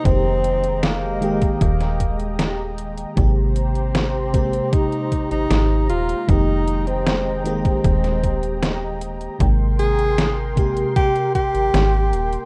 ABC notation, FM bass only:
X:1
M:4/4
L:1/16
Q:1/4=77
K:Ab
V:1 name="FM bass" clef=bass
F,,,6- F,,, z E,,,6- E,,, z | A,,,6- A,,, z4 A,,, A,,,2 E,,, z | F,,,6- F,,, z E,,,6- E,,, z | A,,,6- A,,, z4 A,,, A,,,2 E,,, z |]